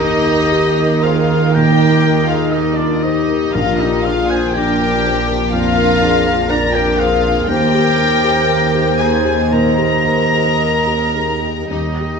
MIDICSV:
0, 0, Header, 1, 10, 480
1, 0, Start_track
1, 0, Key_signature, -3, "major"
1, 0, Tempo, 1030928
1, 717, Tempo, 1001669
1, 1672, Time_signature, 4, 2, 24, 8
1, 2157, Tempo, 983607
1, 4077, Tempo, 1047120
1, 5037, Tempo, 1140684
1, 5719, End_track
2, 0, Start_track
2, 0, Title_t, "Oboe"
2, 0, Program_c, 0, 68
2, 0, Note_on_c, 0, 75, 82
2, 483, Note_on_c, 0, 77, 73
2, 490, Note_off_c, 0, 75, 0
2, 719, Note_on_c, 0, 79, 79
2, 726, Note_off_c, 0, 77, 0
2, 1071, Note_off_c, 0, 79, 0
2, 1074, Note_on_c, 0, 77, 70
2, 1188, Note_on_c, 0, 75, 72
2, 1195, Note_off_c, 0, 77, 0
2, 1305, Note_on_c, 0, 74, 74
2, 1312, Note_off_c, 0, 75, 0
2, 1434, Note_on_c, 0, 75, 67
2, 1441, Note_off_c, 0, 74, 0
2, 1667, Note_off_c, 0, 75, 0
2, 1670, Note_on_c, 0, 77, 73
2, 1800, Note_on_c, 0, 75, 67
2, 1807, Note_off_c, 0, 77, 0
2, 1924, Note_on_c, 0, 77, 70
2, 1931, Note_off_c, 0, 75, 0
2, 2040, Note_on_c, 0, 80, 73
2, 2048, Note_off_c, 0, 77, 0
2, 2156, Note_on_c, 0, 79, 89
2, 2163, Note_off_c, 0, 80, 0
2, 2508, Note_off_c, 0, 79, 0
2, 2638, Note_on_c, 0, 77, 92
2, 3115, Note_on_c, 0, 82, 75
2, 3122, Note_off_c, 0, 77, 0
2, 3230, Note_on_c, 0, 79, 82
2, 3238, Note_off_c, 0, 82, 0
2, 3351, Note_on_c, 0, 77, 72
2, 3358, Note_off_c, 0, 79, 0
2, 3589, Note_off_c, 0, 77, 0
2, 3594, Note_on_c, 0, 79, 84
2, 4317, Note_on_c, 0, 80, 70
2, 4324, Note_off_c, 0, 79, 0
2, 4555, Note_on_c, 0, 82, 84
2, 4562, Note_off_c, 0, 80, 0
2, 5450, Note_off_c, 0, 82, 0
2, 5521, Note_on_c, 0, 75, 58
2, 5719, Note_off_c, 0, 75, 0
2, 5719, End_track
3, 0, Start_track
3, 0, Title_t, "Violin section"
3, 0, Program_c, 1, 48
3, 0, Note_on_c, 1, 75, 110
3, 478, Note_off_c, 1, 75, 0
3, 478, Note_on_c, 1, 77, 80
3, 716, Note_on_c, 1, 79, 103
3, 717, Note_off_c, 1, 77, 0
3, 1072, Note_on_c, 1, 77, 85
3, 1074, Note_off_c, 1, 79, 0
3, 1190, Note_off_c, 1, 77, 0
3, 1190, Note_on_c, 1, 75, 81
3, 1298, Note_on_c, 1, 74, 77
3, 1306, Note_off_c, 1, 75, 0
3, 1423, Note_off_c, 1, 74, 0
3, 1425, Note_on_c, 1, 75, 82
3, 1670, Note_off_c, 1, 75, 0
3, 1679, Note_on_c, 1, 77, 97
3, 1784, Note_on_c, 1, 75, 78
3, 1798, Note_off_c, 1, 77, 0
3, 1905, Note_on_c, 1, 77, 91
3, 1909, Note_off_c, 1, 75, 0
3, 2029, Note_on_c, 1, 80, 80
3, 2032, Note_off_c, 1, 77, 0
3, 2138, Note_on_c, 1, 79, 100
3, 2153, Note_off_c, 1, 80, 0
3, 2619, Note_off_c, 1, 79, 0
3, 2631, Note_on_c, 1, 77, 110
3, 3105, Note_on_c, 1, 82, 96
3, 3111, Note_off_c, 1, 77, 0
3, 3227, Note_on_c, 1, 79, 89
3, 3228, Note_off_c, 1, 82, 0
3, 3348, Note_off_c, 1, 79, 0
3, 3351, Note_on_c, 1, 77, 94
3, 3589, Note_off_c, 1, 77, 0
3, 3591, Note_on_c, 1, 79, 121
3, 4297, Note_off_c, 1, 79, 0
3, 4312, Note_on_c, 1, 80, 87
3, 4548, Note_off_c, 1, 80, 0
3, 4553, Note_on_c, 1, 82, 94
3, 5515, Note_off_c, 1, 82, 0
3, 5518, Note_on_c, 1, 75, 65
3, 5719, Note_off_c, 1, 75, 0
3, 5719, End_track
4, 0, Start_track
4, 0, Title_t, "Flute"
4, 0, Program_c, 2, 73
4, 0, Note_on_c, 2, 67, 75
4, 465, Note_off_c, 2, 67, 0
4, 482, Note_on_c, 2, 68, 78
4, 723, Note_on_c, 2, 70, 68
4, 731, Note_off_c, 2, 68, 0
4, 1074, Note_off_c, 2, 70, 0
4, 1077, Note_on_c, 2, 68, 73
4, 1202, Note_on_c, 2, 67, 67
4, 1209, Note_off_c, 2, 68, 0
4, 1313, Note_on_c, 2, 65, 66
4, 1320, Note_off_c, 2, 67, 0
4, 1434, Note_on_c, 2, 67, 73
4, 1441, Note_off_c, 2, 65, 0
4, 1678, Note_on_c, 2, 70, 76
4, 1685, Note_off_c, 2, 67, 0
4, 1803, Note_on_c, 2, 67, 68
4, 1810, Note_off_c, 2, 70, 0
4, 1923, Note_on_c, 2, 68, 65
4, 1930, Note_off_c, 2, 67, 0
4, 2043, Note_on_c, 2, 72, 75
4, 2050, Note_off_c, 2, 68, 0
4, 2160, Note_off_c, 2, 72, 0
4, 2163, Note_on_c, 2, 70, 83
4, 2505, Note_off_c, 2, 70, 0
4, 2648, Note_on_c, 2, 70, 85
4, 3110, Note_on_c, 2, 74, 87
4, 3118, Note_off_c, 2, 70, 0
4, 3234, Note_on_c, 2, 70, 76
4, 3241, Note_off_c, 2, 74, 0
4, 3347, Note_on_c, 2, 68, 72
4, 3354, Note_off_c, 2, 70, 0
4, 3587, Note_on_c, 2, 70, 92
4, 3595, Note_off_c, 2, 68, 0
4, 4315, Note_on_c, 2, 72, 70
4, 4322, Note_off_c, 2, 70, 0
4, 4550, Note_off_c, 2, 72, 0
4, 4554, Note_on_c, 2, 75, 83
4, 5518, Note_on_c, 2, 67, 57
4, 5524, Note_off_c, 2, 75, 0
4, 5719, Note_off_c, 2, 67, 0
4, 5719, End_track
5, 0, Start_track
5, 0, Title_t, "French horn section"
5, 0, Program_c, 3, 60
5, 0, Note_on_c, 3, 70, 83
5, 217, Note_off_c, 3, 70, 0
5, 236, Note_on_c, 3, 70, 70
5, 709, Note_on_c, 3, 63, 77
5, 716, Note_off_c, 3, 70, 0
5, 1668, Note_off_c, 3, 63, 0
5, 1672, Note_on_c, 3, 65, 77
5, 2148, Note_off_c, 3, 65, 0
5, 2160, Note_on_c, 3, 62, 68
5, 2563, Note_off_c, 3, 62, 0
5, 2646, Note_on_c, 3, 70, 80
5, 2876, Note_off_c, 3, 70, 0
5, 2883, Note_on_c, 3, 68, 66
5, 3117, Note_off_c, 3, 68, 0
5, 3124, Note_on_c, 3, 70, 75
5, 3594, Note_off_c, 3, 70, 0
5, 3596, Note_on_c, 3, 72, 88
5, 5040, Note_off_c, 3, 72, 0
5, 5045, Note_on_c, 3, 70, 55
5, 5269, Note_off_c, 3, 70, 0
5, 5281, Note_on_c, 3, 67, 49
5, 5449, Note_off_c, 3, 67, 0
5, 5519, Note_on_c, 3, 67, 50
5, 5719, Note_off_c, 3, 67, 0
5, 5719, End_track
6, 0, Start_track
6, 0, Title_t, "Felt piano"
6, 0, Program_c, 4, 0
6, 0, Control_c, 4, 64, 127
6, 0, Note_on_c, 4, 39, 62
6, 0, Note_on_c, 4, 70, 50
6, 6, Note_on_c, 4, 63, 52
6, 72, Note_off_c, 4, 70, 0
6, 126, Note_on_c, 4, 70, 47
6, 195, Note_off_c, 4, 63, 0
6, 241, Note_on_c, 4, 67, 50
6, 315, Note_off_c, 4, 70, 0
6, 368, Note_on_c, 4, 70, 55
6, 432, Note_off_c, 4, 67, 0
6, 482, Note_on_c, 4, 72, 42
6, 555, Note_off_c, 4, 70, 0
6, 600, Note_off_c, 4, 72, 0
6, 607, Note_on_c, 4, 70, 54
6, 701, Note_off_c, 4, 39, 0
6, 727, Note_on_c, 4, 46, 48
6, 794, Note_off_c, 4, 70, 0
6, 840, Note_on_c, 4, 70, 52
6, 914, Note_off_c, 4, 46, 0
6, 958, Note_on_c, 4, 63, 40
6, 1028, Note_off_c, 4, 70, 0
6, 1077, Note_on_c, 4, 70, 51
6, 1145, Note_off_c, 4, 63, 0
6, 1196, Note_on_c, 4, 67, 47
6, 1263, Note_off_c, 4, 70, 0
6, 1315, Note_on_c, 4, 70, 50
6, 1383, Note_off_c, 4, 67, 0
6, 1435, Note_on_c, 4, 72, 44
6, 1504, Note_off_c, 4, 70, 0
6, 1553, Note_off_c, 4, 72, 0
6, 1553, Note_on_c, 4, 70, 46
6, 1674, Note_off_c, 4, 70, 0
6, 1678, Note_on_c, 4, 34, 68
6, 1680, Control_c, 4, 64, 0
6, 1759, Control_c, 4, 64, 127
6, 1800, Note_on_c, 4, 70, 53
6, 1929, Note_on_c, 4, 62, 51
6, 1992, Note_off_c, 4, 70, 0
6, 2049, Note_on_c, 4, 70, 49
6, 2116, Note_off_c, 4, 62, 0
6, 2168, Note_on_c, 4, 62, 53
6, 2236, Note_off_c, 4, 70, 0
6, 2282, Note_on_c, 4, 70, 55
6, 2356, Note_off_c, 4, 62, 0
6, 2404, Note_on_c, 4, 72, 41
6, 2473, Note_off_c, 4, 70, 0
6, 2517, Note_on_c, 4, 70, 62
6, 2522, Note_off_c, 4, 72, 0
6, 2623, Note_off_c, 4, 34, 0
6, 2637, Note_on_c, 4, 41, 59
6, 2710, Note_off_c, 4, 70, 0
6, 2758, Note_on_c, 4, 70, 56
6, 2829, Note_off_c, 4, 41, 0
6, 2879, Note_on_c, 4, 62, 50
6, 2949, Note_off_c, 4, 70, 0
6, 2995, Note_on_c, 4, 70, 57
6, 3068, Note_off_c, 4, 62, 0
6, 3110, Note_on_c, 4, 62, 58
6, 3185, Note_off_c, 4, 70, 0
6, 3232, Note_on_c, 4, 70, 56
6, 3302, Note_off_c, 4, 62, 0
6, 3358, Note_on_c, 4, 72, 47
6, 3422, Note_off_c, 4, 70, 0
6, 3468, Note_on_c, 4, 70, 48
6, 3473, Note_off_c, 4, 72, 0
6, 3588, Note_off_c, 4, 70, 0
6, 3592, Note_on_c, 4, 39, 66
6, 3597, Control_c, 4, 64, 0
6, 3688, Control_c, 4, 64, 127
6, 3718, Note_on_c, 4, 67, 53
6, 3836, Note_on_c, 4, 63, 50
6, 3909, Note_off_c, 4, 67, 0
6, 3961, Note_on_c, 4, 67, 45
6, 4030, Note_off_c, 4, 63, 0
6, 4087, Note_on_c, 4, 70, 49
6, 4150, Note_off_c, 4, 67, 0
6, 4199, Note_on_c, 4, 67, 51
6, 4268, Note_off_c, 4, 70, 0
6, 4313, Note_on_c, 4, 68, 39
6, 4384, Note_off_c, 4, 67, 0
6, 4429, Note_off_c, 4, 68, 0
6, 4430, Note_on_c, 4, 67, 52
6, 4530, Note_off_c, 4, 39, 0
6, 4554, Note_on_c, 4, 46, 42
6, 4621, Note_off_c, 4, 67, 0
6, 4674, Note_on_c, 4, 67, 45
6, 4744, Note_off_c, 4, 46, 0
6, 4794, Note_on_c, 4, 63, 41
6, 4866, Note_off_c, 4, 67, 0
6, 4928, Note_on_c, 4, 67, 39
6, 4989, Note_off_c, 4, 63, 0
6, 5049, Note_on_c, 4, 70, 39
6, 5113, Note_off_c, 4, 67, 0
6, 5160, Note_on_c, 4, 67, 39
6, 5228, Note_off_c, 4, 70, 0
6, 5275, Note_on_c, 4, 68, 31
6, 5345, Note_off_c, 4, 67, 0
6, 5392, Note_off_c, 4, 68, 0
6, 5396, Note_on_c, 4, 67, 32
6, 5514, Note_on_c, 4, 39, 42
6, 5515, Note_off_c, 4, 67, 0
6, 5520, Control_c, 4, 64, 0
6, 5598, Control_c, 4, 64, 127
6, 5640, Note_on_c, 4, 67, 32
6, 5719, Note_off_c, 4, 39, 0
6, 5719, Note_off_c, 4, 67, 0
6, 5719, End_track
7, 0, Start_track
7, 0, Title_t, "Violin section"
7, 0, Program_c, 5, 48
7, 0, Note_on_c, 5, 63, 86
7, 475, Note_on_c, 5, 65, 72
7, 477, Note_off_c, 5, 63, 0
7, 709, Note_on_c, 5, 67, 82
7, 715, Note_off_c, 5, 65, 0
7, 1062, Note_on_c, 5, 65, 71
7, 1070, Note_off_c, 5, 67, 0
7, 1181, Note_on_c, 5, 63, 65
7, 1185, Note_off_c, 5, 65, 0
7, 1295, Note_on_c, 5, 62, 65
7, 1304, Note_off_c, 5, 63, 0
7, 1417, Note_on_c, 5, 63, 69
7, 1421, Note_off_c, 5, 62, 0
7, 1661, Note_off_c, 5, 63, 0
7, 1672, Note_on_c, 5, 65, 84
7, 1793, Note_on_c, 5, 63, 74
7, 1795, Note_off_c, 5, 65, 0
7, 1916, Note_off_c, 5, 63, 0
7, 1916, Note_on_c, 5, 65, 80
7, 2034, Note_on_c, 5, 68, 80
7, 2038, Note_off_c, 5, 65, 0
7, 2146, Note_on_c, 5, 67, 86
7, 2156, Note_off_c, 5, 68, 0
7, 2633, Note_off_c, 5, 67, 0
7, 2633, Note_on_c, 5, 65, 95
7, 3105, Note_on_c, 5, 70, 70
7, 3112, Note_off_c, 5, 65, 0
7, 3226, Note_off_c, 5, 70, 0
7, 3231, Note_on_c, 5, 67, 80
7, 3346, Note_on_c, 5, 65, 73
7, 3350, Note_off_c, 5, 67, 0
7, 3587, Note_off_c, 5, 65, 0
7, 3599, Note_on_c, 5, 67, 91
7, 4300, Note_off_c, 5, 67, 0
7, 4314, Note_on_c, 5, 68, 67
7, 4549, Note_off_c, 5, 68, 0
7, 4551, Note_on_c, 5, 70, 86
7, 5497, Note_off_c, 5, 70, 0
7, 5517, Note_on_c, 5, 63, 55
7, 5719, Note_off_c, 5, 63, 0
7, 5719, End_track
8, 0, Start_track
8, 0, Title_t, "Viola section"
8, 0, Program_c, 6, 48
8, 0, Note_on_c, 6, 58, 60
8, 0, Note_on_c, 6, 63, 65
8, 1653, Note_off_c, 6, 58, 0
8, 1653, Note_off_c, 6, 63, 0
8, 1665, Note_on_c, 6, 62, 66
8, 1667, Note_on_c, 6, 53, 76
8, 3566, Note_off_c, 6, 62, 0
8, 3567, Note_off_c, 6, 53, 0
8, 3598, Note_on_c, 6, 58, 69
8, 3598, Note_on_c, 6, 63, 66
8, 5499, Note_off_c, 6, 63, 0
8, 5515, Note_off_c, 6, 58, 0
8, 5518, Note_on_c, 6, 55, 43
8, 5520, Note_on_c, 6, 63, 50
8, 5719, Note_off_c, 6, 55, 0
8, 5719, Note_off_c, 6, 63, 0
8, 5719, End_track
9, 0, Start_track
9, 0, Title_t, "Cello section"
9, 0, Program_c, 7, 48
9, 0, Note_on_c, 7, 51, 68
9, 1653, Note_off_c, 7, 51, 0
9, 1673, Note_on_c, 7, 46, 68
9, 3570, Note_off_c, 7, 46, 0
9, 3593, Note_on_c, 7, 39, 78
9, 5511, Note_off_c, 7, 39, 0
9, 5516, Note_on_c, 7, 39, 51
9, 5719, Note_off_c, 7, 39, 0
9, 5719, End_track
10, 0, Start_track
10, 0, Title_t, "Double bass section"
10, 0, Program_c, 8, 48
10, 0, Note_on_c, 8, 39, 66
10, 1653, Note_off_c, 8, 39, 0
10, 1672, Note_on_c, 8, 34, 72
10, 3569, Note_off_c, 8, 34, 0
10, 3590, Note_on_c, 8, 39, 69
10, 5509, Note_off_c, 8, 39, 0
10, 5514, Note_on_c, 8, 39, 45
10, 5719, Note_off_c, 8, 39, 0
10, 5719, End_track
0, 0, End_of_file